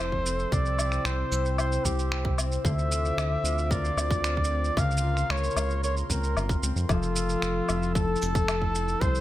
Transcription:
Already playing: F1 F3 C4 F4 A4 C5 E6
0.00 E4
0.12 kick
0.26 C4, shaker
0.39 shaker
0.52 C2 C3 C5 D5 G5, kick, shaker
0.65 shaker
0.79 E4, low woodblock, shaker
0.92 finger snap, shaker
1.05 C2 C4 C5, finger snap, shaker
1.32 C2 E4, shaker
1.45 shaker
1.58 C5, low woodblock, shaker
1.72 shaker
1.85 C2 C4 G4, kick, shaker
1.99 shaker
2.12 E4, finger snap
2.25 kick
2.38 C4, low woodblock, shaker
2.52 shaker
2.65 D2 D3 F4 C5 E5 D6, kick, shaker
2.78 shaker
2.91 F4, shaker
3.05 shaker
3.17 D2 C4, finger snap, low woodblock, shaker
3.44 D2 F4, shaker
3.58 shaker
3.71 A#4 D5, kick, shaker
3.84 C5, shaker
3.97 D2 C4, low woodblock, shaker
4.11 kick, shaker
4.24 F4, finger snap, shaker
4.37 kick
4.44 shaker
4.51 C4
4.64 shaker
4.77 C#2 C#3 A#4 F5 C6, kick, low woodblock, shaker
4.91 shaker
4.97 shaker
5.04 F4
5.17 finger snap, shaker
5.30 C#2 C#5, finger snap, shaker
5.37 shaker
5.44 shaker
5.50 shaker
5.56 C#2 F4, low woodblock, shaker
5.70 shaker
5.84 A#4 C#5, shaker
5.97 shaker
6.10 C#2 C4 A#4, kick, shaker
6.23 shaker
6.37 G1 F4, low woodblock, shaker
6.49 kick, shaker
6.63 C#2 C4, shaker
6.76 F2, shaker
6.89 F1 F3 F4 A4 E6, kick, low woodblock, shaker
7.03 shaker
7.16 shaker
7.29 shaker
7.42 F1 C4, finger snap, shaker
7.69 F1 E4, low woodblock, shaker
7.82 shaker
7.95 A4, kick, shaker
8.16 shaker
8.22 F1 C4, shaker
8.35 kick, shaker
8.48 E4, finger snap, low woodblock, shaker
8.62 kick
8.75 C4, shaker
8.88 shaker
9.01 C2 C3 C4 C5 G5, kick, shaker
9.15 shaker

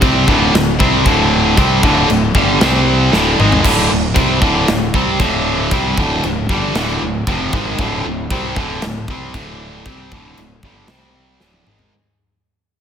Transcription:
0.01 C2 C3 G3 C4, kick, china
0.27 D1 D2 A2 D3, kick
0.53 D1 D2 A2, snare, china
0.79 C2 C3 G3 C4, kick
1.05 D1 D2 A2 D3, kick, china
1.57 C2 C3 G3 C4, kick, china
1.83 D1 D2 A2 D3, kick
2.07 D1 D2 A2, china
2.35 G1 G2 D3 G3, kick
2.60 C2 C3 G3 C4, snare, china
3.11 D1 D2 A2 D3, snare
3.39 G#1 G#2 D#3 G#3, mid tom
3.52 floor tom
3.64 D1 D2 A2 D3, kick, crash, china
3.89 D1 D2 A2
4.14 C2 C3 G3 C4, kick, china
4.41 D1 D2 A2 D3, kick
4.68 D1 D2 A2, snare, china
4.94 C2 C3 G3 C4, kick
5.19 D1 D2 A2 D3, kick, china
5.71 C2 C3 G3 C4, kick, china
5.97 D1 D2 A2 D3, kick
6.23 D1 D2 A2, china
6.49 G1 G2 D3 G3, kick
6.75 D1 D2 A2 D3, snare, china
7.02 D1 D2 A2
7.27 F1 F2 C3 F3, kick, china
7.53 G#1 G#2 D#3 G#3, kick
7.78 D1 D2 A2 D3, kick, china
8.05 D1 D2 A2
8.31 C2 C3 G3 C4, kick, china
8.56 D1 D2 A2 D3, kick
8.82 D1 D2 A2, snare, china
9.08 C2 C3 G3 C4, kick
9.34 D1 D2 A2 D3, kick, china
9.86 C2 C3 G3 C4, kick, china
10.12 D1 D2 A2 D3, kick
10.37 D1 D2 A2, china
10.63 G1 G2 D3 G3, kick
10.88 C2 C3 G3 C4, snare, china
11.40 D1 D2 A2 D3, snare
11.53 high tom
11.66 G#1 G#2 D#3 G#3, mid tom
11.79 floor tom

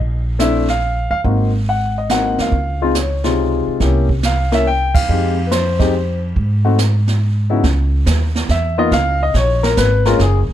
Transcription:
Already playing: A#1
0.39 A3 C4 D4 E4 E5, snare, hi-hat pedal
0.68 F5, snare
1.11 D#2 F5
1.24 G#1 A#3 C4 D#4 F#4, brush sweep, kick
1.69 F#5
1.98 D#5
2.10 A#3 C4 D#4 F#4 F#5, snare, hi-hat pedal
2.38 D2 F5, snare
2.52 C#2, brush sweep, kick
2.82 G#3 C4 D#4 F4
2.95 C#5, snare, hi-hat pedal
3.24 C3 G#3 D#4 F4, snare
3.67 muted upright bass stroke
3.80 C2 A#3 C#4 E4 G4, brush sweep, kick, snare
4.09 kick
4.23 F5, snare, hi-hat pedal
4.52 A#3 C#4 E4 A#4 E5, snare
4.67 G5
4.94 E2 F5, kick, ride
5.09 F2 G#3 C4 D#4 G4, brush sweep
5.47 B4
5.51 C5, snare, hi-hat pedal
5.79 G#3 C4 D#4 G4, kick, snare
6.36 G#2, brush sweep, kick
6.65 A3 C4 D#4 F#4
6.79 snare, hi-hat pedal
7.07 snare
7.50 C#3 B3 D#4 E4 F#4
7.64 C#2, brush sweep, kick, snare
8.06 D#2, kick, snare, hi-hat pedal
8.35 snare
8.49 E2 E5, kick, snare
8.78 A#3 B3 D#4 F4 D#5
8.92 C#2 F5, brush sweep, kick, snare
9.23 D#5
9.34 A#1 C#5, kick, snare
9.63 A#4, snare
9.77 G#1 B4, kick, snare, hi-hat pedal
10.05 G#3 A#3 C#4 F4 A#4, snare
10.19 F#1 G#4, brush sweep, kick, snare
10.49 muted upright bass stroke

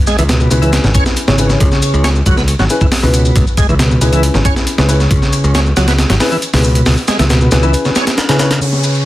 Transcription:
0.07 G#3, snare, shaker
0.18 C#2 E3, closed hi-hat, shaker
0.29 B2, snare, closed hi-hat, shaker
0.40 B2, shaker
0.51 C#2 B2 C#4 E4 G#4 B4, closed hi-hat, shaker
0.62 E3 C#4 E4 G#4 B4, closed hi-hat, shaker
0.73 snare, closed hi-hat, shaker
0.84 G#1 C#3, snare, shaker
0.95 C#4, kick, closed hi-hat, shaker
1.06 snare, shaker
1.17 closed hi-hat, shaker
1.28 G#1 C#3 C#4 E4 G#4 C#5, snare, shaker
1.38 C#4 E4 G#4 B4, closed hi-hat, shaker
1.50 C#4 E4 G#4 C#5, snare, shaker
1.60 C#2 C#3, kick, closed hi-hat, shaker
1.72 snare, shaker
1.82 closed hi-hat, shaker
1.94 C#2, shaker
2.04 C#4, snare, closed hi-hat, shaker
2.16 shaker
2.26 C#2 F#3, kick, closed hi-hat, shaker
2.37 B3, snare, shaker
2.48 closed hi-hat, shaker
2.59 G#1 F#3, snare, shaker
2.70 C#4 E4 G#4 B4, closed hi-hat, shaker
2.81 E3, kick, shaker
2.92 snare, open hi-hat, shaker
3.03 C#2 B2 C#4 E4 G#4 B4, shaker
3.14 closed hi-hat, shaker
3.25 shaker
3.36 C#2, kick, closed hi-hat, shaker
3.47 shaker
3.57 G#3, kick, closed hi-hat, shaker
3.69 C#2 E3, shaker
3.79 B2, snare, closed hi-hat, shaker
3.91 B2, shaker
4.01 C#2 B2 C#4 E4 G#4 B4, closed hi-hat, shaker
4.12 E3 C#4 E4 G#4 B4, closed hi-hat, shaker
4.23 closed hi-hat, shaker
4.34 G#1 C#3, snare, shaker
4.45 C#4, kick, closed hi-hat, shaker
4.56 snare, shaker
4.67 closed hi-hat, shaker
4.78 C#2 C#3 C#4 E4 G#4 B4, snare, shaker
4.88 C#4 E4 G#4 B4, closed hi-hat, shaker
5.00 snare, shaker
5.11 C#2 C#3, kick, closed hi-hat, shaker
5.22 snare, shaker
5.33 closed hi-hat, shaker
5.44 C#2, shaker
5.55 C#4, snare, closed hi-hat, shaker
5.66 shaker
5.77 C#2 F#3, snare, closed hi-hat, shaker
5.88 B3, snare, closed hi-hat, shaker
5.98 snare, closed hi-hat, shaker
6.10 G#1 F#3, snare, closed hi-hat, shaker
6.20 C#4 E4 G#4 B4, snare, open hi-hat, shaker
6.32 E3, shaker
6.42 closed hi-hat, shaker
6.53 C#2 B2 C#4 E4 G#4 B4, snare, open hi-hat, shaker
6.64 shaker
6.75 closed hi-hat, shaker
6.86 C#2, snare, open hi-hat, shaker
6.97 shaker
7.08 G#3, snare, closed hi-hat, shaker
7.19 C#2 E3, snare, closed hi-hat, shaker
7.30 B2, snare, closed hi-hat, shaker
7.41 B2, shaker
7.51 C#2 B2 C#4 E4 G#4 B4, snare, closed hi-hat, shaker
7.63 E3 C#4 E4 G#4 B4, shaker
7.74 closed hi-hat, shaker
7.85 C#3, snare, shaker
7.96 C#4, snare, closed hi-hat, shaker
8.07 snare, closed hi-hat, shaker
8.18 snare, closed hi-hat, shaker
8.29 C#3 C#4 E4 G#4 B4, snare, closed hi-hat, shaker
8.39 C#4 E4 G#4 B4, snare, closed hi-hat, shaker
8.51 snare, closed hi-hat, shaker
8.61 C#3, closed hi-hat, downlifter, shaker
8.73 snare, shaker
8.83 closed hi-hat, shaker
8.95 shaker

